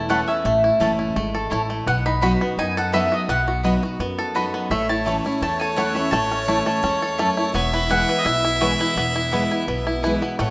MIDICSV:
0, 0, Header, 1, 7, 480
1, 0, Start_track
1, 0, Key_signature, 3, "major"
1, 0, Tempo, 355030
1, 610, Time_signature, 4, 2, 24, 8
1, 14200, End_track
2, 0, Start_track
2, 0, Title_t, "Mandolin"
2, 0, Program_c, 0, 25
2, 129, Note_on_c, 0, 78, 92
2, 361, Note_off_c, 0, 78, 0
2, 372, Note_on_c, 0, 76, 77
2, 1760, Note_off_c, 0, 76, 0
2, 2535, Note_on_c, 0, 78, 99
2, 2763, Note_off_c, 0, 78, 0
2, 2782, Note_on_c, 0, 83, 101
2, 2995, Note_off_c, 0, 83, 0
2, 3010, Note_on_c, 0, 83, 104
2, 3456, Note_off_c, 0, 83, 0
2, 3497, Note_on_c, 0, 80, 108
2, 3748, Note_off_c, 0, 80, 0
2, 3760, Note_on_c, 0, 78, 90
2, 3969, Note_off_c, 0, 78, 0
2, 3974, Note_on_c, 0, 76, 93
2, 4226, Note_off_c, 0, 76, 0
2, 4240, Note_on_c, 0, 75, 81
2, 4459, Note_on_c, 0, 78, 103
2, 4466, Note_off_c, 0, 75, 0
2, 6087, Note_off_c, 0, 78, 0
2, 6364, Note_on_c, 0, 76, 88
2, 6609, Note_off_c, 0, 76, 0
2, 6614, Note_on_c, 0, 81, 96
2, 7276, Note_off_c, 0, 81, 0
2, 7337, Note_on_c, 0, 81, 94
2, 7560, Note_off_c, 0, 81, 0
2, 7565, Note_on_c, 0, 80, 88
2, 7787, Note_off_c, 0, 80, 0
2, 7792, Note_on_c, 0, 78, 86
2, 8034, Note_off_c, 0, 78, 0
2, 8040, Note_on_c, 0, 76, 75
2, 8256, Note_off_c, 0, 76, 0
2, 8261, Note_on_c, 0, 81, 98
2, 8719, Note_off_c, 0, 81, 0
2, 9003, Note_on_c, 0, 81, 76
2, 9455, Note_off_c, 0, 81, 0
2, 10214, Note_on_c, 0, 73, 99
2, 10442, Note_off_c, 0, 73, 0
2, 10459, Note_on_c, 0, 71, 91
2, 10689, Note_on_c, 0, 78, 107
2, 10695, Note_off_c, 0, 71, 0
2, 11050, Note_off_c, 0, 78, 0
2, 11067, Note_on_c, 0, 75, 78
2, 11150, Note_on_c, 0, 76, 101
2, 11162, Note_off_c, 0, 75, 0
2, 11641, Note_on_c, 0, 73, 91
2, 11653, Note_off_c, 0, 76, 0
2, 11709, Note_off_c, 0, 73, 0
2, 11885, Note_on_c, 0, 71, 77
2, 13277, Note_off_c, 0, 71, 0
2, 14062, Note_on_c, 0, 78, 97
2, 14200, Note_off_c, 0, 78, 0
2, 14200, End_track
3, 0, Start_track
3, 0, Title_t, "Fiddle"
3, 0, Program_c, 1, 110
3, 6371, Note_on_c, 1, 73, 118
3, 10195, Note_on_c, 1, 76, 127
3, 10215, Note_off_c, 1, 73, 0
3, 13810, Note_off_c, 1, 76, 0
3, 14046, Note_on_c, 1, 73, 125
3, 14200, Note_off_c, 1, 73, 0
3, 14200, End_track
4, 0, Start_track
4, 0, Title_t, "Mandolin"
4, 0, Program_c, 2, 25
4, 122, Note_on_c, 2, 57, 83
4, 128, Note_on_c, 2, 64, 92
4, 134, Note_on_c, 2, 73, 91
4, 140, Note_on_c, 2, 81, 96
4, 252, Note_off_c, 2, 57, 0
4, 255, Note_off_c, 2, 64, 0
4, 258, Note_off_c, 2, 73, 0
4, 261, Note_off_c, 2, 81, 0
4, 1080, Note_on_c, 2, 57, 86
4, 1085, Note_on_c, 2, 64, 89
4, 1092, Note_on_c, 2, 73, 86
4, 1094, Note_on_c, 2, 81, 98
4, 1210, Note_off_c, 2, 57, 0
4, 1213, Note_off_c, 2, 64, 0
4, 1217, Note_off_c, 2, 73, 0
4, 1218, Note_off_c, 2, 81, 0
4, 2027, Note_on_c, 2, 57, 90
4, 2037, Note_on_c, 2, 64, 91
4, 2043, Note_on_c, 2, 73, 102
4, 2045, Note_on_c, 2, 81, 98
4, 2164, Note_off_c, 2, 57, 0
4, 2169, Note_off_c, 2, 64, 0
4, 2172, Note_off_c, 2, 73, 0
4, 2173, Note_off_c, 2, 81, 0
4, 2991, Note_on_c, 2, 59, 84
4, 3001, Note_on_c, 2, 66, 86
4, 3003, Note_on_c, 2, 75, 99
4, 3006, Note_on_c, 2, 83, 106
4, 3126, Note_off_c, 2, 59, 0
4, 3131, Note_off_c, 2, 66, 0
4, 3132, Note_off_c, 2, 75, 0
4, 3133, Note_off_c, 2, 83, 0
4, 3952, Note_on_c, 2, 59, 80
4, 3958, Note_on_c, 2, 66, 90
4, 3963, Note_on_c, 2, 75, 99
4, 3967, Note_on_c, 2, 83, 105
4, 4086, Note_off_c, 2, 59, 0
4, 4089, Note_off_c, 2, 66, 0
4, 4091, Note_off_c, 2, 75, 0
4, 4093, Note_off_c, 2, 83, 0
4, 4912, Note_on_c, 2, 59, 80
4, 4916, Note_on_c, 2, 66, 89
4, 4925, Note_on_c, 2, 75, 95
4, 4931, Note_on_c, 2, 83, 96
4, 5046, Note_off_c, 2, 59, 0
4, 5047, Note_off_c, 2, 66, 0
4, 5052, Note_off_c, 2, 75, 0
4, 5055, Note_off_c, 2, 83, 0
4, 5874, Note_on_c, 2, 59, 81
4, 5880, Note_on_c, 2, 66, 89
4, 5883, Note_on_c, 2, 75, 96
4, 5891, Note_on_c, 2, 83, 92
4, 6006, Note_off_c, 2, 59, 0
4, 6009, Note_off_c, 2, 66, 0
4, 6011, Note_off_c, 2, 75, 0
4, 6015, Note_off_c, 2, 83, 0
4, 6825, Note_on_c, 2, 57, 75
4, 6837, Note_on_c, 2, 64, 96
4, 6842, Note_on_c, 2, 73, 100
4, 6847, Note_on_c, 2, 81, 90
4, 6962, Note_off_c, 2, 57, 0
4, 6968, Note_off_c, 2, 64, 0
4, 6970, Note_off_c, 2, 73, 0
4, 6973, Note_off_c, 2, 81, 0
4, 7792, Note_on_c, 2, 57, 85
4, 7801, Note_on_c, 2, 64, 91
4, 7804, Note_on_c, 2, 73, 102
4, 7810, Note_on_c, 2, 81, 101
4, 7925, Note_off_c, 2, 57, 0
4, 7929, Note_off_c, 2, 64, 0
4, 7931, Note_off_c, 2, 73, 0
4, 7934, Note_off_c, 2, 81, 0
4, 8754, Note_on_c, 2, 57, 90
4, 8761, Note_on_c, 2, 64, 92
4, 8763, Note_on_c, 2, 73, 88
4, 8769, Note_on_c, 2, 81, 92
4, 8886, Note_off_c, 2, 57, 0
4, 8890, Note_off_c, 2, 64, 0
4, 8890, Note_off_c, 2, 73, 0
4, 8893, Note_off_c, 2, 81, 0
4, 9706, Note_on_c, 2, 57, 91
4, 9712, Note_on_c, 2, 64, 86
4, 9720, Note_on_c, 2, 73, 92
4, 9725, Note_on_c, 2, 81, 97
4, 9842, Note_off_c, 2, 57, 0
4, 9845, Note_off_c, 2, 64, 0
4, 9849, Note_off_c, 2, 73, 0
4, 9851, Note_off_c, 2, 81, 0
4, 10670, Note_on_c, 2, 59, 91
4, 10676, Note_on_c, 2, 64, 86
4, 10685, Note_on_c, 2, 71, 95
4, 10688, Note_on_c, 2, 80, 104
4, 10804, Note_off_c, 2, 59, 0
4, 10807, Note_off_c, 2, 64, 0
4, 10812, Note_off_c, 2, 71, 0
4, 10813, Note_off_c, 2, 80, 0
4, 11631, Note_on_c, 2, 59, 89
4, 11635, Note_on_c, 2, 64, 98
4, 11643, Note_on_c, 2, 71, 96
4, 11646, Note_on_c, 2, 80, 93
4, 11765, Note_off_c, 2, 59, 0
4, 11767, Note_off_c, 2, 64, 0
4, 11771, Note_off_c, 2, 71, 0
4, 11772, Note_off_c, 2, 80, 0
4, 12593, Note_on_c, 2, 59, 97
4, 12599, Note_on_c, 2, 64, 89
4, 12609, Note_on_c, 2, 71, 91
4, 12611, Note_on_c, 2, 80, 91
4, 12726, Note_off_c, 2, 59, 0
4, 12729, Note_off_c, 2, 64, 0
4, 12734, Note_off_c, 2, 71, 0
4, 12735, Note_off_c, 2, 80, 0
4, 13555, Note_on_c, 2, 59, 83
4, 13562, Note_on_c, 2, 64, 92
4, 13567, Note_on_c, 2, 71, 101
4, 13574, Note_on_c, 2, 80, 89
4, 13687, Note_off_c, 2, 59, 0
4, 13691, Note_off_c, 2, 64, 0
4, 13693, Note_off_c, 2, 71, 0
4, 13697, Note_off_c, 2, 80, 0
4, 14200, End_track
5, 0, Start_track
5, 0, Title_t, "Five-string banjo"
5, 0, Program_c, 3, 105
5, 0, Note_on_c, 3, 52, 61
5, 0, Note_on_c, 3, 64, 60
5, 139, Note_on_c, 3, 57, 70
5, 382, Note_on_c, 3, 61, 58
5, 567, Note_off_c, 3, 64, 0
5, 602, Note_off_c, 3, 52, 0
5, 602, Note_off_c, 3, 57, 0
5, 618, Note_on_c, 3, 57, 74
5, 866, Note_on_c, 3, 64, 60
5, 1045, Note_off_c, 3, 61, 0
5, 1075, Note_off_c, 3, 57, 0
5, 1091, Note_on_c, 3, 57, 62
5, 1320, Note_off_c, 3, 64, 0
5, 1337, Note_on_c, 3, 64, 54
5, 1556, Note_off_c, 3, 57, 0
5, 1572, Note_on_c, 3, 57, 68
5, 1820, Note_on_c, 3, 69, 58
5, 2002, Note_off_c, 3, 64, 0
5, 2053, Note_on_c, 3, 64, 59
5, 2249, Note_off_c, 3, 57, 0
5, 2297, Note_on_c, 3, 57, 62
5, 2483, Note_off_c, 3, 69, 0
5, 2526, Note_off_c, 3, 57, 0
5, 2531, Note_off_c, 3, 64, 0
5, 2532, Note_on_c, 3, 59, 71
5, 2782, Note_on_c, 3, 63, 62
5, 3017, Note_on_c, 3, 66, 58
5, 3256, Note_off_c, 3, 59, 0
5, 3261, Note_on_c, 3, 59, 66
5, 3492, Note_off_c, 3, 63, 0
5, 3498, Note_on_c, 3, 63, 67
5, 3691, Note_off_c, 3, 66, 0
5, 3748, Note_on_c, 3, 69, 61
5, 3924, Note_off_c, 3, 59, 0
5, 3969, Note_on_c, 3, 59, 71
5, 4171, Note_off_c, 3, 63, 0
5, 4218, Note_on_c, 3, 66, 61
5, 4407, Note_off_c, 3, 69, 0
5, 4434, Note_off_c, 3, 59, 0
5, 4450, Note_on_c, 3, 59, 70
5, 4685, Note_off_c, 3, 66, 0
5, 4701, Note_on_c, 3, 66, 55
5, 4914, Note_off_c, 3, 59, 0
5, 4930, Note_on_c, 3, 59, 56
5, 5164, Note_off_c, 3, 66, 0
5, 5181, Note_on_c, 3, 66, 54
5, 5393, Note_off_c, 3, 59, 0
5, 5410, Note_on_c, 3, 59, 71
5, 5658, Note_on_c, 3, 69, 61
5, 5843, Note_off_c, 3, 66, 0
5, 5890, Note_on_c, 3, 66, 58
5, 6087, Note_off_c, 3, 59, 0
5, 6137, Note_on_c, 3, 59, 56
5, 6322, Note_off_c, 3, 69, 0
5, 6366, Note_off_c, 3, 59, 0
5, 6368, Note_off_c, 3, 66, 0
5, 6371, Note_on_c, 3, 57, 70
5, 6617, Note_on_c, 3, 64, 56
5, 6851, Note_off_c, 3, 57, 0
5, 6857, Note_on_c, 3, 57, 55
5, 7104, Note_off_c, 3, 64, 0
5, 7109, Note_on_c, 3, 64, 55
5, 7318, Note_off_c, 3, 57, 0
5, 7334, Note_on_c, 3, 57, 70
5, 7586, Note_on_c, 3, 69, 58
5, 7807, Note_off_c, 3, 64, 0
5, 7813, Note_on_c, 3, 64, 60
5, 8009, Note_off_c, 3, 57, 0
5, 8058, Note_on_c, 3, 57, 59
5, 8246, Note_off_c, 3, 69, 0
5, 8270, Note_off_c, 3, 57, 0
5, 8286, Note_on_c, 3, 57, 80
5, 8537, Note_on_c, 3, 61, 59
5, 8759, Note_off_c, 3, 64, 0
5, 8765, Note_on_c, 3, 64, 59
5, 8965, Note_off_c, 3, 57, 0
5, 9009, Note_on_c, 3, 57, 64
5, 9201, Note_off_c, 3, 61, 0
5, 9243, Note_on_c, 3, 61, 72
5, 9496, Note_on_c, 3, 69, 56
5, 9677, Note_off_c, 3, 57, 0
5, 9725, Note_on_c, 3, 57, 72
5, 9923, Note_off_c, 3, 61, 0
5, 9963, Note_off_c, 3, 64, 0
5, 9969, Note_on_c, 3, 64, 60
5, 10161, Note_off_c, 3, 69, 0
5, 10198, Note_off_c, 3, 57, 0
5, 10203, Note_on_c, 3, 59, 75
5, 10455, Note_off_c, 3, 64, 0
5, 10455, Note_on_c, 3, 64, 59
5, 10689, Note_off_c, 3, 64, 0
5, 10689, Note_on_c, 3, 64, 60
5, 10934, Note_off_c, 3, 59, 0
5, 10939, Note_on_c, 3, 59, 70
5, 11166, Note_off_c, 3, 64, 0
5, 11166, Note_on_c, 3, 64, 68
5, 11418, Note_off_c, 3, 64, 0
5, 11418, Note_on_c, 3, 64, 64
5, 11602, Note_off_c, 3, 59, 0
5, 11650, Note_on_c, 3, 59, 69
5, 11902, Note_off_c, 3, 64, 0
5, 11907, Note_on_c, 3, 64, 63
5, 12118, Note_off_c, 3, 59, 0
5, 12134, Note_on_c, 3, 59, 76
5, 12374, Note_off_c, 3, 64, 0
5, 12379, Note_on_c, 3, 64, 57
5, 12597, Note_off_c, 3, 59, 0
5, 12613, Note_on_c, 3, 59, 56
5, 12858, Note_off_c, 3, 64, 0
5, 12863, Note_on_c, 3, 64, 51
5, 13073, Note_off_c, 3, 59, 0
5, 13089, Note_on_c, 3, 59, 62
5, 13335, Note_off_c, 3, 64, 0
5, 13340, Note_on_c, 3, 64, 58
5, 13567, Note_off_c, 3, 64, 0
5, 13572, Note_on_c, 3, 64, 61
5, 13767, Note_off_c, 3, 59, 0
5, 13822, Note_on_c, 3, 59, 59
5, 14041, Note_off_c, 3, 59, 0
5, 14047, Note_on_c, 3, 57, 76
5, 14200, Note_off_c, 3, 57, 0
5, 14200, Note_off_c, 3, 64, 0
5, 14200, End_track
6, 0, Start_track
6, 0, Title_t, "Steel-string acoustic guitar"
6, 0, Program_c, 4, 25
6, 0, Note_on_c, 4, 40, 85
6, 120, Note_on_c, 4, 52, 83
6, 133, Note_on_c, 4, 57, 92
6, 145, Note_on_c, 4, 61, 92
6, 152, Note_on_c, 4, 64, 89
6, 564, Note_off_c, 4, 40, 0
6, 581, Note_off_c, 4, 52, 0
6, 588, Note_off_c, 4, 57, 0
6, 594, Note_off_c, 4, 61, 0
6, 598, Note_off_c, 4, 64, 0
6, 609, Note_on_c, 4, 45, 85
6, 1083, Note_on_c, 4, 52, 84
6, 1095, Note_on_c, 4, 57, 81
6, 1102, Note_on_c, 4, 61, 98
6, 1117, Note_on_c, 4, 64, 95
6, 1523, Note_off_c, 4, 45, 0
6, 1543, Note_off_c, 4, 52, 0
6, 1549, Note_off_c, 4, 57, 0
6, 1552, Note_off_c, 4, 61, 0
6, 1560, Note_off_c, 4, 64, 0
6, 1573, Note_on_c, 4, 56, 87
6, 2028, Note_off_c, 4, 56, 0
6, 2062, Note_on_c, 4, 45, 87
6, 2512, Note_off_c, 4, 45, 0
6, 2537, Note_on_c, 4, 47, 93
6, 3003, Note_on_c, 4, 54, 91
6, 3018, Note_on_c, 4, 59, 86
6, 3026, Note_on_c, 4, 63, 84
6, 3037, Note_on_c, 4, 66, 90
6, 3243, Note_off_c, 4, 66, 0
6, 3244, Note_off_c, 4, 54, 0
6, 3251, Note_off_c, 4, 59, 0
6, 3255, Note_off_c, 4, 63, 0
6, 3259, Note_on_c, 4, 66, 67
6, 3287, Note_on_c, 4, 63, 52
6, 3446, Note_off_c, 4, 47, 0
6, 3480, Note_off_c, 4, 66, 0
6, 3494, Note_off_c, 4, 63, 0
6, 3502, Note_on_c, 4, 42, 89
6, 3974, Note_on_c, 4, 54, 78
6, 3990, Note_on_c, 4, 59, 84
6, 4000, Note_on_c, 4, 63, 96
6, 4010, Note_on_c, 4, 66, 96
6, 4408, Note_off_c, 4, 42, 0
6, 4428, Note_off_c, 4, 54, 0
6, 4436, Note_off_c, 4, 59, 0
6, 4440, Note_off_c, 4, 63, 0
6, 4445, Note_off_c, 4, 66, 0
6, 4449, Note_on_c, 4, 47, 87
6, 4922, Note_on_c, 4, 54, 78
6, 4930, Note_on_c, 4, 59, 91
6, 4945, Note_on_c, 4, 63, 86
6, 4955, Note_on_c, 4, 66, 85
6, 5157, Note_off_c, 4, 66, 0
6, 5163, Note_off_c, 4, 54, 0
6, 5167, Note_off_c, 4, 59, 0
6, 5173, Note_on_c, 4, 66, 62
6, 5174, Note_off_c, 4, 63, 0
6, 5208, Note_on_c, 4, 63, 51
6, 5362, Note_off_c, 4, 47, 0
6, 5397, Note_off_c, 4, 66, 0
6, 5412, Note_on_c, 4, 42, 90
6, 5414, Note_off_c, 4, 63, 0
6, 5880, Note_on_c, 4, 54, 81
6, 5894, Note_on_c, 4, 59, 90
6, 5901, Note_on_c, 4, 63, 88
6, 5913, Note_on_c, 4, 66, 97
6, 6323, Note_off_c, 4, 42, 0
6, 6340, Note_off_c, 4, 54, 0
6, 6347, Note_off_c, 4, 59, 0
6, 6350, Note_off_c, 4, 63, 0
6, 6357, Note_off_c, 4, 66, 0
6, 6381, Note_on_c, 4, 45, 85
6, 6848, Note_on_c, 4, 52, 82
6, 6863, Note_on_c, 4, 57, 85
6, 6866, Note_on_c, 4, 61, 95
6, 6882, Note_on_c, 4, 64, 87
6, 7076, Note_off_c, 4, 64, 0
6, 7086, Note_off_c, 4, 52, 0
6, 7092, Note_on_c, 4, 64, 59
6, 7093, Note_off_c, 4, 57, 0
6, 7095, Note_off_c, 4, 61, 0
6, 7125, Note_on_c, 4, 61, 48
6, 7287, Note_off_c, 4, 45, 0
6, 7316, Note_off_c, 4, 64, 0
6, 7332, Note_off_c, 4, 61, 0
6, 7333, Note_on_c, 4, 40, 82
6, 7805, Note_on_c, 4, 52, 87
6, 7814, Note_on_c, 4, 57, 94
6, 7826, Note_on_c, 4, 61, 94
6, 7836, Note_on_c, 4, 64, 95
6, 8026, Note_off_c, 4, 64, 0
6, 8043, Note_on_c, 4, 64, 65
6, 8044, Note_off_c, 4, 52, 0
6, 8048, Note_off_c, 4, 57, 0
6, 8055, Note_off_c, 4, 61, 0
6, 8082, Note_on_c, 4, 61, 56
6, 8243, Note_off_c, 4, 40, 0
6, 8271, Note_off_c, 4, 64, 0
6, 8280, Note_on_c, 4, 45, 90
6, 8291, Note_off_c, 4, 61, 0
6, 8755, Note_on_c, 4, 52, 78
6, 8765, Note_on_c, 4, 57, 85
6, 8774, Note_on_c, 4, 61, 85
6, 8784, Note_on_c, 4, 64, 90
6, 9197, Note_off_c, 4, 45, 0
6, 9217, Note_off_c, 4, 52, 0
6, 9223, Note_off_c, 4, 57, 0
6, 9227, Note_off_c, 4, 61, 0
6, 9231, Note_on_c, 4, 56, 89
6, 9232, Note_off_c, 4, 64, 0
6, 9695, Note_off_c, 4, 56, 0
6, 9721, Note_on_c, 4, 42, 88
6, 10180, Note_off_c, 4, 42, 0
6, 10194, Note_on_c, 4, 40, 91
6, 10669, Note_on_c, 4, 52, 86
6, 10683, Note_on_c, 4, 56, 85
6, 10692, Note_on_c, 4, 59, 94
6, 10700, Note_on_c, 4, 64, 86
6, 11114, Note_off_c, 4, 40, 0
6, 11134, Note_off_c, 4, 52, 0
6, 11142, Note_off_c, 4, 56, 0
6, 11146, Note_off_c, 4, 59, 0
6, 11150, Note_off_c, 4, 64, 0
6, 11155, Note_on_c, 4, 47, 96
6, 11643, Note_on_c, 4, 52, 90
6, 11651, Note_on_c, 4, 56, 93
6, 11661, Note_on_c, 4, 59, 92
6, 11672, Note_on_c, 4, 64, 95
6, 12075, Note_off_c, 4, 47, 0
6, 12102, Note_off_c, 4, 52, 0
6, 12106, Note_off_c, 4, 56, 0
6, 12111, Note_off_c, 4, 59, 0
6, 12116, Note_off_c, 4, 64, 0
6, 12117, Note_on_c, 4, 40, 86
6, 12595, Note_on_c, 4, 52, 86
6, 12609, Note_on_c, 4, 56, 80
6, 12614, Note_on_c, 4, 59, 98
6, 12628, Note_on_c, 4, 64, 92
6, 13036, Note_off_c, 4, 40, 0
6, 13058, Note_off_c, 4, 52, 0
6, 13065, Note_off_c, 4, 56, 0
6, 13068, Note_off_c, 4, 59, 0
6, 13075, Note_off_c, 4, 64, 0
6, 13090, Note_on_c, 4, 47, 82
6, 13576, Note_on_c, 4, 52, 88
6, 13591, Note_on_c, 4, 56, 84
6, 13596, Note_on_c, 4, 59, 100
6, 13607, Note_on_c, 4, 64, 87
6, 13798, Note_off_c, 4, 64, 0
6, 13810, Note_off_c, 4, 52, 0
6, 13815, Note_on_c, 4, 64, 60
6, 13818, Note_off_c, 4, 56, 0
6, 13820, Note_off_c, 4, 59, 0
6, 13850, Note_on_c, 4, 59, 51
6, 14003, Note_off_c, 4, 47, 0
6, 14038, Note_off_c, 4, 64, 0
6, 14051, Note_on_c, 4, 45, 90
6, 14055, Note_off_c, 4, 59, 0
6, 14200, Note_off_c, 4, 45, 0
6, 14200, End_track
7, 0, Start_track
7, 0, Title_t, "Upright bass"
7, 0, Program_c, 5, 32
7, 0, Note_on_c, 5, 28, 85
7, 295, Note_off_c, 5, 28, 0
7, 603, Note_on_c, 5, 33, 93
7, 928, Note_off_c, 5, 33, 0
7, 1081, Note_on_c, 5, 30, 84
7, 1493, Note_off_c, 5, 30, 0
7, 1562, Note_on_c, 5, 32, 83
7, 1973, Note_off_c, 5, 32, 0
7, 2045, Note_on_c, 5, 33, 86
7, 2454, Note_off_c, 5, 33, 0
7, 2519, Note_on_c, 5, 35, 95
7, 3167, Note_off_c, 5, 35, 0
7, 3480, Note_on_c, 5, 42, 86
7, 4128, Note_off_c, 5, 42, 0
7, 4444, Note_on_c, 5, 35, 93
7, 5090, Note_off_c, 5, 35, 0
7, 5397, Note_on_c, 5, 42, 79
7, 6046, Note_off_c, 5, 42, 0
7, 6357, Note_on_c, 5, 33, 93
7, 7005, Note_off_c, 5, 33, 0
7, 7317, Note_on_c, 5, 40, 76
7, 7965, Note_off_c, 5, 40, 0
7, 8279, Note_on_c, 5, 33, 92
7, 8927, Note_off_c, 5, 33, 0
7, 9237, Note_on_c, 5, 40, 79
7, 9886, Note_off_c, 5, 40, 0
7, 10193, Note_on_c, 5, 28, 100
7, 10843, Note_off_c, 5, 28, 0
7, 11155, Note_on_c, 5, 35, 81
7, 11804, Note_off_c, 5, 35, 0
7, 12113, Note_on_c, 5, 28, 90
7, 12763, Note_off_c, 5, 28, 0
7, 13083, Note_on_c, 5, 35, 82
7, 13730, Note_off_c, 5, 35, 0
7, 14046, Note_on_c, 5, 33, 94
7, 14200, Note_off_c, 5, 33, 0
7, 14200, End_track
0, 0, End_of_file